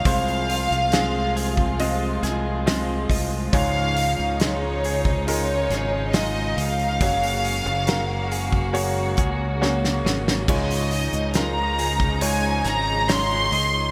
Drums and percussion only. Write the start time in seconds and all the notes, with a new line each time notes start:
0.05 kick, hi-hat pedal, open hi-hat
0.28 open hi-hat
0.49 hi-hat pedal, open hi-hat
0.72 hi-hat pedal
0.92 snare, hi-hat pedal, open hi-hat
1.36 hi-hat pedal, open hi-hat
1.57 kick
1.79 hi-hat pedal, open hi-hat
2.23 snare, hi-hat pedal, open hi-hat
2.67 snare, hi-hat pedal, open hi-hat
3.10 kick, hi-hat pedal, open hi-hat
3.53 kick, hi-hat pedal, open hi-hat
3.96 hi-hat pedal, open hi-hat
4.39 snare, hi-hat pedal, open hi-hat
4.84 hi-hat pedal, open hi-hat
5.05 kick
5.27 hi-hat pedal, open hi-hat
5.70 snare, hi-hat pedal, open hi-hat
6.13 snare, hi-hat pedal, open hi-hat
6.57 hi-hat pedal, open hi-hat
6.79 open hi-hat
7.00 kick, hi-hat pedal, open hi-hat
7.22 hi-hat pedal, open hi-hat
7.44 hi-hat pedal, open hi-hat
7.66 hi-hat pedal
7.87 snare, hi-hat pedal, open hi-hat
8.31 hi-hat pedal, open hi-hat
8.52 kick
8.74 hi-hat pedal, open hi-hat
9.17 kick, hi-hat pedal, open hi-hat
9.63 snare
9.85 snare
10.06 snare
10.28 snare
10.48 kick, crash
10.70 hi-hat pedal, open hi-hat
10.90 hi-hat pedal, open hi-hat
11.12 hi-hat pedal
11.33 snare, hi-hat pedal, open hi-hat
11.78 hi-hat pedal, open hi-hat
12.00 kick
12.21 hi-hat pedal, open hi-hat
12.64 snare, hi-hat pedal, open hi-hat
13.08 snare, hi-hat pedal, open hi-hat
13.52 hi-hat pedal, open hi-hat